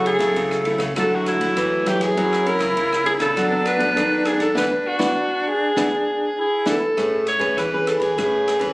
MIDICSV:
0, 0, Header, 1, 6, 480
1, 0, Start_track
1, 0, Key_signature, 3, "major"
1, 0, Tempo, 600601
1, 1734, Time_signature, 4, 2, 24, 8
1, 6977, End_track
2, 0, Start_track
2, 0, Title_t, "Alto saxophone"
2, 0, Program_c, 0, 65
2, 54, Note_on_c, 0, 68, 87
2, 502, Note_off_c, 0, 68, 0
2, 793, Note_on_c, 0, 69, 92
2, 917, Note_on_c, 0, 66, 82
2, 929, Note_off_c, 0, 69, 0
2, 1018, Note_off_c, 0, 66, 0
2, 1023, Note_on_c, 0, 64, 88
2, 1500, Note_on_c, 0, 67, 81
2, 1512, Note_off_c, 0, 64, 0
2, 1617, Note_on_c, 0, 68, 93
2, 1629, Note_off_c, 0, 67, 0
2, 1981, Note_on_c, 0, 70, 110
2, 1993, Note_off_c, 0, 68, 0
2, 2444, Note_off_c, 0, 70, 0
2, 2449, Note_on_c, 0, 68, 91
2, 2504, Note_off_c, 0, 68, 0
2, 2571, Note_on_c, 0, 69, 101
2, 2929, Note_on_c, 0, 71, 106
2, 2941, Note_off_c, 0, 69, 0
2, 3406, Note_on_c, 0, 68, 93
2, 3418, Note_off_c, 0, 71, 0
2, 3524, Note_off_c, 0, 68, 0
2, 3529, Note_on_c, 0, 69, 90
2, 3643, Note_off_c, 0, 69, 0
2, 3657, Note_on_c, 0, 71, 94
2, 3897, Note_on_c, 0, 66, 100
2, 3909, Note_off_c, 0, 71, 0
2, 4378, Note_on_c, 0, 68, 92
2, 4390, Note_off_c, 0, 66, 0
2, 5095, Note_off_c, 0, 68, 0
2, 5122, Note_on_c, 0, 68, 90
2, 5331, Note_off_c, 0, 68, 0
2, 5349, Note_on_c, 0, 69, 92
2, 5789, Note_off_c, 0, 69, 0
2, 5821, Note_on_c, 0, 73, 95
2, 6058, Note_on_c, 0, 71, 88
2, 6070, Note_off_c, 0, 73, 0
2, 6297, Note_on_c, 0, 69, 87
2, 6309, Note_off_c, 0, 71, 0
2, 6408, Note_off_c, 0, 69, 0
2, 6413, Note_on_c, 0, 68, 92
2, 6977, Note_off_c, 0, 68, 0
2, 6977, End_track
3, 0, Start_track
3, 0, Title_t, "Flute"
3, 0, Program_c, 1, 73
3, 0, Note_on_c, 1, 69, 103
3, 759, Note_off_c, 1, 69, 0
3, 764, Note_on_c, 1, 66, 80
3, 1482, Note_off_c, 1, 66, 0
3, 1741, Note_on_c, 1, 64, 111
3, 2686, Note_on_c, 1, 62, 102
3, 2698, Note_off_c, 1, 64, 0
3, 3642, Note_off_c, 1, 62, 0
3, 3646, Note_on_c, 1, 62, 96
3, 5104, Note_on_c, 1, 64, 82
3, 5116, Note_off_c, 1, 62, 0
3, 5578, Note_off_c, 1, 64, 0
3, 6977, End_track
4, 0, Start_track
4, 0, Title_t, "Nylon-string guitar"
4, 0, Program_c, 2, 24
4, 0, Note_on_c, 2, 49, 52
4, 0, Note_on_c, 2, 54, 53
4, 0, Note_on_c, 2, 57, 60
4, 0, Note_on_c, 2, 64, 57
4, 134, Note_off_c, 2, 54, 0
4, 136, Note_off_c, 2, 57, 0
4, 136, Note_off_c, 2, 64, 0
4, 157, Note_on_c, 2, 54, 59
4, 160, Note_on_c, 2, 57, 61
4, 164, Note_on_c, 2, 64, 62
4, 270, Note_off_c, 2, 49, 0
4, 286, Note_on_c, 2, 49, 51
4, 487, Note_off_c, 2, 54, 0
4, 489, Note_off_c, 2, 57, 0
4, 491, Note_off_c, 2, 64, 0
4, 523, Note_on_c, 2, 54, 54
4, 526, Note_on_c, 2, 57, 55
4, 533, Note_on_c, 2, 64, 54
4, 670, Note_off_c, 2, 54, 0
4, 671, Note_off_c, 2, 57, 0
4, 674, Note_off_c, 2, 64, 0
4, 746, Note_off_c, 2, 49, 0
4, 772, Note_on_c, 2, 50, 62
4, 775, Note_on_c, 2, 54, 61
4, 777, Note_on_c, 2, 57, 64
4, 778, Note_on_c, 2, 64, 68
4, 1095, Note_off_c, 2, 54, 0
4, 1097, Note_off_c, 2, 57, 0
4, 1097, Note_off_c, 2, 64, 0
4, 1123, Note_on_c, 2, 54, 62
4, 1128, Note_on_c, 2, 57, 64
4, 1130, Note_on_c, 2, 64, 61
4, 1230, Note_off_c, 2, 50, 0
4, 1254, Note_on_c, 2, 45, 58
4, 1451, Note_off_c, 2, 54, 0
4, 1452, Note_off_c, 2, 57, 0
4, 1454, Note_off_c, 2, 64, 0
4, 1493, Note_on_c, 2, 54, 60
4, 1495, Note_on_c, 2, 57, 60
4, 1499, Note_on_c, 2, 64, 65
4, 1696, Note_off_c, 2, 54, 0
4, 1696, Note_off_c, 2, 57, 0
4, 1698, Note_off_c, 2, 64, 0
4, 1710, Note_off_c, 2, 45, 0
4, 1731, Note_on_c, 2, 54, 52
4, 1733, Note_on_c, 2, 61, 56
4, 1736, Note_on_c, 2, 64, 50
4, 1741, Note_on_c, 2, 70, 61
4, 1934, Note_off_c, 2, 61, 0
4, 1937, Note_off_c, 2, 64, 0
4, 1939, Note_off_c, 2, 70, 0
4, 1968, Note_on_c, 2, 61, 49
4, 1971, Note_on_c, 2, 70, 63
4, 1973, Note_on_c, 2, 64, 55
4, 2189, Note_off_c, 2, 54, 0
4, 2213, Note_on_c, 2, 49, 55
4, 2413, Note_off_c, 2, 61, 0
4, 2414, Note_off_c, 2, 70, 0
4, 2415, Note_off_c, 2, 64, 0
4, 2442, Note_on_c, 2, 61, 49
4, 2446, Note_on_c, 2, 64, 52
4, 2449, Note_on_c, 2, 70, 59
4, 2521, Note_off_c, 2, 61, 0
4, 2521, Note_off_c, 2, 64, 0
4, 2524, Note_off_c, 2, 70, 0
4, 2557, Note_on_c, 2, 59, 61
4, 2557, Note_on_c, 2, 62, 58
4, 2560, Note_on_c, 2, 69, 64
4, 2670, Note_off_c, 2, 49, 0
4, 2688, Note_on_c, 2, 54, 63
4, 2767, Note_off_c, 2, 62, 0
4, 2768, Note_off_c, 2, 59, 0
4, 2768, Note_off_c, 2, 69, 0
4, 2807, Note_on_c, 2, 59, 63
4, 2812, Note_on_c, 2, 62, 64
4, 2817, Note_on_c, 2, 69, 67
4, 3012, Note_off_c, 2, 59, 0
4, 3015, Note_off_c, 2, 62, 0
4, 3016, Note_off_c, 2, 69, 0
4, 3028, Note_on_c, 2, 59, 59
4, 3032, Note_on_c, 2, 62, 63
4, 3036, Note_on_c, 2, 69, 67
4, 3124, Note_off_c, 2, 59, 0
4, 3124, Note_off_c, 2, 62, 0
4, 3127, Note_off_c, 2, 69, 0
4, 3147, Note_off_c, 2, 54, 0
4, 3157, Note_on_c, 2, 54, 54
4, 3164, Note_on_c, 2, 59, 49
4, 3167, Note_on_c, 2, 69, 62
4, 3168, Note_on_c, 2, 62, 58
4, 3478, Note_off_c, 2, 59, 0
4, 3480, Note_off_c, 2, 62, 0
4, 3480, Note_off_c, 2, 69, 0
4, 3622, Note_off_c, 2, 54, 0
4, 3637, Note_on_c, 2, 62, 93
4, 3637, Note_on_c, 2, 64, 83
4, 3640, Note_on_c, 2, 59, 85
4, 3720, Note_off_c, 2, 64, 0
4, 3721, Note_off_c, 2, 62, 0
4, 3722, Note_off_c, 2, 59, 0
4, 3991, Note_on_c, 2, 62, 96
4, 3994, Note_on_c, 2, 59, 93
4, 3999, Note_on_c, 2, 64, 93
4, 4077, Note_off_c, 2, 59, 0
4, 4078, Note_off_c, 2, 62, 0
4, 4078, Note_off_c, 2, 64, 0
4, 4609, Note_on_c, 2, 62, 95
4, 4614, Note_on_c, 2, 59, 89
4, 4615, Note_on_c, 2, 64, 91
4, 4689, Note_off_c, 2, 62, 0
4, 4689, Note_off_c, 2, 64, 0
4, 4690, Note_off_c, 2, 59, 0
4, 5325, Note_on_c, 2, 62, 98
4, 5327, Note_on_c, 2, 59, 93
4, 5329, Note_on_c, 2, 64, 100
4, 5405, Note_off_c, 2, 62, 0
4, 5406, Note_off_c, 2, 59, 0
4, 5407, Note_off_c, 2, 64, 0
4, 5565, Note_on_c, 2, 57, 50
4, 5567, Note_on_c, 2, 61, 50
4, 5572, Note_on_c, 2, 68, 54
4, 5574, Note_on_c, 2, 71, 59
4, 5794, Note_off_c, 2, 61, 0
4, 5794, Note_off_c, 2, 68, 0
4, 5798, Note_off_c, 2, 71, 0
4, 5909, Note_on_c, 2, 61, 61
4, 5911, Note_on_c, 2, 68, 56
4, 5917, Note_on_c, 2, 71, 60
4, 6025, Note_off_c, 2, 57, 0
4, 6047, Note_on_c, 2, 52, 51
4, 6122, Note_off_c, 2, 68, 0
4, 6123, Note_off_c, 2, 61, 0
4, 6126, Note_off_c, 2, 71, 0
4, 6180, Note_on_c, 2, 61, 61
4, 6183, Note_on_c, 2, 68, 53
4, 6189, Note_on_c, 2, 71, 66
4, 6497, Note_off_c, 2, 61, 0
4, 6499, Note_off_c, 2, 68, 0
4, 6500, Note_off_c, 2, 71, 0
4, 6505, Note_off_c, 2, 52, 0
4, 6534, Note_on_c, 2, 57, 54
4, 6537, Note_on_c, 2, 61, 58
4, 6541, Note_on_c, 2, 68, 58
4, 6541, Note_on_c, 2, 71, 59
4, 6855, Note_off_c, 2, 61, 0
4, 6856, Note_off_c, 2, 68, 0
4, 6858, Note_off_c, 2, 71, 0
4, 6878, Note_on_c, 2, 61, 53
4, 6881, Note_on_c, 2, 68, 52
4, 6887, Note_on_c, 2, 71, 69
4, 6977, Note_off_c, 2, 57, 0
4, 6977, Note_off_c, 2, 61, 0
4, 6977, Note_off_c, 2, 68, 0
4, 6977, Note_off_c, 2, 71, 0
4, 6977, End_track
5, 0, Start_track
5, 0, Title_t, "Nylon-string guitar"
5, 0, Program_c, 3, 24
5, 0, Note_on_c, 3, 49, 96
5, 120, Note_off_c, 3, 49, 0
5, 150, Note_on_c, 3, 49, 86
5, 262, Note_off_c, 3, 49, 0
5, 293, Note_on_c, 3, 49, 95
5, 599, Note_off_c, 3, 49, 0
5, 626, Note_on_c, 3, 49, 87
5, 740, Note_off_c, 3, 49, 0
5, 774, Note_on_c, 3, 50, 82
5, 1182, Note_off_c, 3, 50, 0
5, 1254, Note_on_c, 3, 52, 93
5, 1662, Note_off_c, 3, 52, 0
5, 1738, Note_on_c, 3, 54, 96
5, 2043, Note_off_c, 3, 54, 0
5, 2069, Note_on_c, 3, 49, 88
5, 2182, Note_off_c, 3, 49, 0
5, 2214, Note_on_c, 3, 49, 90
5, 2520, Note_off_c, 3, 49, 0
5, 2551, Note_on_c, 3, 49, 79
5, 2663, Note_off_c, 3, 49, 0
5, 2695, Note_on_c, 3, 54, 92
5, 3103, Note_off_c, 3, 54, 0
5, 3174, Note_on_c, 3, 51, 91
5, 3582, Note_off_c, 3, 51, 0
5, 3654, Note_on_c, 3, 52, 93
5, 3743, Note_off_c, 3, 52, 0
5, 3987, Note_on_c, 3, 52, 92
5, 4089, Note_off_c, 3, 52, 0
5, 4613, Note_on_c, 3, 52, 85
5, 4702, Note_off_c, 3, 52, 0
5, 5319, Note_on_c, 3, 52, 82
5, 5415, Note_off_c, 3, 52, 0
5, 5572, Note_on_c, 3, 45, 91
5, 5878, Note_off_c, 3, 45, 0
5, 5908, Note_on_c, 3, 45, 81
5, 6020, Note_off_c, 3, 45, 0
5, 6058, Note_on_c, 3, 52, 87
5, 6361, Note_off_c, 3, 52, 0
5, 6391, Note_on_c, 3, 52, 75
5, 6502, Note_off_c, 3, 52, 0
5, 6536, Note_on_c, 3, 45, 91
5, 6840, Note_off_c, 3, 45, 0
5, 6867, Note_on_c, 3, 52, 71
5, 6977, Note_off_c, 3, 52, 0
5, 6977, End_track
6, 0, Start_track
6, 0, Title_t, "Drums"
6, 46, Note_on_c, 9, 51, 49
6, 126, Note_off_c, 9, 51, 0
6, 160, Note_on_c, 9, 36, 69
6, 162, Note_on_c, 9, 37, 64
6, 162, Note_on_c, 9, 51, 52
6, 240, Note_off_c, 9, 36, 0
6, 242, Note_off_c, 9, 37, 0
6, 242, Note_off_c, 9, 51, 0
6, 289, Note_on_c, 9, 51, 49
6, 293, Note_on_c, 9, 36, 79
6, 369, Note_off_c, 9, 51, 0
6, 372, Note_off_c, 9, 36, 0
6, 409, Note_on_c, 9, 37, 68
6, 489, Note_off_c, 9, 37, 0
6, 520, Note_on_c, 9, 51, 47
6, 600, Note_off_c, 9, 51, 0
6, 637, Note_on_c, 9, 37, 63
6, 637, Note_on_c, 9, 51, 48
6, 639, Note_on_c, 9, 36, 68
6, 716, Note_off_c, 9, 37, 0
6, 716, Note_off_c, 9, 51, 0
6, 719, Note_off_c, 9, 36, 0
6, 768, Note_on_c, 9, 37, 67
6, 768, Note_on_c, 9, 51, 52
6, 773, Note_on_c, 9, 36, 66
6, 848, Note_off_c, 9, 37, 0
6, 848, Note_off_c, 9, 51, 0
6, 853, Note_off_c, 9, 36, 0
6, 1009, Note_on_c, 9, 37, 69
6, 1009, Note_on_c, 9, 51, 47
6, 1089, Note_off_c, 9, 37, 0
6, 1089, Note_off_c, 9, 51, 0
6, 1123, Note_on_c, 9, 36, 69
6, 1126, Note_on_c, 9, 51, 52
6, 1203, Note_off_c, 9, 36, 0
6, 1206, Note_off_c, 9, 51, 0
6, 1251, Note_on_c, 9, 37, 65
6, 1251, Note_on_c, 9, 51, 51
6, 1255, Note_on_c, 9, 36, 83
6, 1331, Note_off_c, 9, 37, 0
6, 1331, Note_off_c, 9, 51, 0
6, 1335, Note_off_c, 9, 36, 0
6, 1489, Note_on_c, 9, 37, 68
6, 1489, Note_on_c, 9, 51, 51
6, 1569, Note_off_c, 9, 37, 0
6, 1569, Note_off_c, 9, 51, 0
6, 1604, Note_on_c, 9, 36, 58
6, 1605, Note_on_c, 9, 37, 57
6, 1605, Note_on_c, 9, 51, 48
6, 1684, Note_off_c, 9, 36, 0
6, 1685, Note_off_c, 9, 37, 0
6, 1685, Note_off_c, 9, 51, 0
6, 1737, Note_on_c, 9, 36, 65
6, 1737, Note_on_c, 9, 51, 46
6, 1817, Note_off_c, 9, 36, 0
6, 1817, Note_off_c, 9, 51, 0
6, 1860, Note_on_c, 9, 37, 65
6, 1940, Note_off_c, 9, 37, 0
6, 1969, Note_on_c, 9, 51, 47
6, 2049, Note_off_c, 9, 51, 0
6, 2081, Note_on_c, 9, 37, 68
6, 2081, Note_on_c, 9, 51, 50
6, 2082, Note_on_c, 9, 36, 69
6, 2161, Note_off_c, 9, 37, 0
6, 2161, Note_off_c, 9, 51, 0
6, 2162, Note_off_c, 9, 36, 0
6, 2212, Note_on_c, 9, 51, 48
6, 2215, Note_on_c, 9, 36, 78
6, 2292, Note_off_c, 9, 51, 0
6, 2295, Note_off_c, 9, 36, 0
6, 2338, Note_on_c, 9, 37, 67
6, 2418, Note_off_c, 9, 37, 0
6, 2446, Note_on_c, 9, 51, 47
6, 2526, Note_off_c, 9, 51, 0
6, 2557, Note_on_c, 9, 37, 68
6, 2557, Note_on_c, 9, 51, 46
6, 2561, Note_on_c, 9, 36, 65
6, 2637, Note_off_c, 9, 37, 0
6, 2637, Note_off_c, 9, 51, 0
6, 2641, Note_off_c, 9, 36, 0
6, 2692, Note_on_c, 9, 37, 68
6, 2692, Note_on_c, 9, 51, 45
6, 2693, Note_on_c, 9, 36, 66
6, 2772, Note_off_c, 9, 37, 0
6, 2772, Note_off_c, 9, 51, 0
6, 2773, Note_off_c, 9, 36, 0
6, 2921, Note_on_c, 9, 37, 65
6, 2921, Note_on_c, 9, 51, 45
6, 3001, Note_off_c, 9, 37, 0
6, 3001, Note_off_c, 9, 51, 0
6, 3039, Note_on_c, 9, 51, 47
6, 3041, Note_on_c, 9, 36, 69
6, 3119, Note_off_c, 9, 51, 0
6, 3121, Note_off_c, 9, 36, 0
6, 3172, Note_on_c, 9, 37, 66
6, 3172, Note_on_c, 9, 51, 46
6, 3174, Note_on_c, 9, 36, 88
6, 3251, Note_off_c, 9, 37, 0
6, 3251, Note_off_c, 9, 51, 0
6, 3254, Note_off_c, 9, 36, 0
6, 3399, Note_on_c, 9, 37, 71
6, 3399, Note_on_c, 9, 51, 48
6, 3479, Note_off_c, 9, 37, 0
6, 3479, Note_off_c, 9, 51, 0
6, 3516, Note_on_c, 9, 37, 58
6, 3516, Note_on_c, 9, 51, 40
6, 3520, Note_on_c, 9, 36, 60
6, 3596, Note_off_c, 9, 37, 0
6, 3596, Note_off_c, 9, 51, 0
6, 3600, Note_off_c, 9, 36, 0
6, 3648, Note_on_c, 9, 38, 68
6, 3653, Note_on_c, 9, 36, 68
6, 3728, Note_off_c, 9, 38, 0
6, 3733, Note_off_c, 9, 36, 0
6, 3996, Note_on_c, 9, 38, 77
6, 4000, Note_on_c, 9, 36, 75
6, 4076, Note_off_c, 9, 38, 0
6, 4080, Note_off_c, 9, 36, 0
6, 4607, Note_on_c, 9, 38, 73
6, 4611, Note_on_c, 9, 36, 71
6, 4686, Note_off_c, 9, 38, 0
6, 4691, Note_off_c, 9, 36, 0
6, 5322, Note_on_c, 9, 38, 72
6, 5326, Note_on_c, 9, 36, 74
6, 5402, Note_off_c, 9, 38, 0
6, 5406, Note_off_c, 9, 36, 0
6, 5574, Note_on_c, 9, 36, 58
6, 5576, Note_on_c, 9, 37, 60
6, 5576, Note_on_c, 9, 51, 43
6, 5654, Note_off_c, 9, 36, 0
6, 5656, Note_off_c, 9, 37, 0
6, 5656, Note_off_c, 9, 51, 0
6, 5807, Note_on_c, 9, 37, 62
6, 5807, Note_on_c, 9, 51, 46
6, 5887, Note_off_c, 9, 37, 0
6, 5887, Note_off_c, 9, 51, 0
6, 5922, Note_on_c, 9, 36, 66
6, 5923, Note_on_c, 9, 51, 47
6, 6002, Note_off_c, 9, 36, 0
6, 6003, Note_off_c, 9, 51, 0
6, 6055, Note_on_c, 9, 36, 75
6, 6056, Note_on_c, 9, 37, 62
6, 6056, Note_on_c, 9, 51, 45
6, 6135, Note_off_c, 9, 36, 0
6, 6136, Note_off_c, 9, 37, 0
6, 6136, Note_off_c, 9, 51, 0
6, 6290, Note_on_c, 9, 37, 65
6, 6290, Note_on_c, 9, 51, 45
6, 6370, Note_off_c, 9, 37, 0
6, 6370, Note_off_c, 9, 51, 0
6, 6404, Note_on_c, 9, 36, 62
6, 6406, Note_on_c, 9, 51, 42
6, 6484, Note_off_c, 9, 36, 0
6, 6486, Note_off_c, 9, 51, 0
6, 6537, Note_on_c, 9, 36, 63
6, 6540, Note_on_c, 9, 37, 62
6, 6540, Note_on_c, 9, 51, 43
6, 6617, Note_off_c, 9, 36, 0
6, 6620, Note_off_c, 9, 37, 0
6, 6620, Note_off_c, 9, 51, 0
6, 6775, Note_on_c, 9, 37, 63
6, 6775, Note_on_c, 9, 51, 43
6, 6855, Note_off_c, 9, 37, 0
6, 6855, Note_off_c, 9, 51, 0
6, 6880, Note_on_c, 9, 36, 62
6, 6880, Note_on_c, 9, 51, 44
6, 6960, Note_off_c, 9, 36, 0
6, 6960, Note_off_c, 9, 51, 0
6, 6977, End_track
0, 0, End_of_file